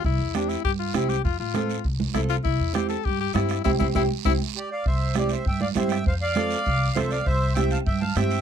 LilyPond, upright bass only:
\new Staff \with { instrumentName = "Upright bass" } { \clef bass \time 4/4 \key c \major \tempo 4 = 200 c,8 e,4. g,4 c,4 | f,8 a,4. c,4 c,4 | c,8 e,4. g,4 g,4 | c,8 c,8 c,8 r8 c,8 r4. |
c,2 g,4 g,4 | f,2 c,4 r4 | c,2 g,4 g,4 | }